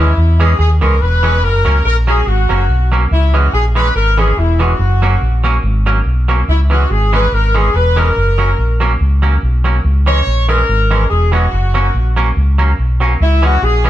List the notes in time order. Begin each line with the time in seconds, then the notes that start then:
0.00 D#2 C#4 E4
0.17 E2
0.40 E3 G#3 C#4 G#4
0.59 D#2 G#4
0.81 C#2 E3 G#3 C#4 A#4
1.01 E1 B4
1.23 E3 G#3 C#4
1.43 F#1 A#4
1.65 C#2 F#3 A#3 C#4
1.85 A#1 A#4
2.07 F#3 A#3 C#4 G#4
2.27 G#1 F#4
2.49 F#1 F#3 A#3 C#4
2.69 B1
2.92 F#3 A#3 C#4
3.11 C#2 E4
3.34 E3 G#3 C#4 F#4
3.53 A#1 G#4
3.75 E3 G#3 C#4 B4
3.95 G#1 A#4
4.18 E3 G#3 C#4 G#4
4.37 E1 E4
4.59 E3 G#3 C#4 F#4
4.79 F#1
5.02 F#3 A#3 C#4
5.21 A#1
5.44 F#3 A#3 C#4
5.63 G#1
5.86 F#3 A#3 C#4
6.06 B1
6.28 F#3 A#3 C#4
6.48 C#2 E4
6.70 E3 G#3 C#4 F#4
6.90 G#1 G#4
7.13 E3 G#3 C#4 B4
7.32 G#1 A#4
7.55 E3 G#3 C#4 G#4
7.74 E1 B4
7.96 E3 G#3 C#4 A#4
8.16 F#1
8.38 F#3 A#3 C#4
8.58 A#1
8.80 F#3 A#3 C#4
9.01 C#2
9.22 F#3 A#3 C#4
9.43 B1
9.64 F#3 A#3 C#4
9.84 C#2
10.06 E3 G#3 C#4 C#5
10.27 A#1
10.49 E3 G#3 C#4 A#4
10.69 G#1
10.91 E3 G#3 C#4
11.09 E1 G#4
11.32 E3 G#3 C#4 F#4
11.52 F#1
11.74 F#3 A#3 C#4
11.94 A#1
12.16 F#3 A#3 C#4
12.37 C#2
12.58 F#3 A#3 C#4
12.79 B1
13.00 F#3 A#3 C#4
13.20 C#2 E4
13.42 E3 G#3 C#4 F#4
13.62 A#1 G#4
13.84 E3 G#3 C#4 G#4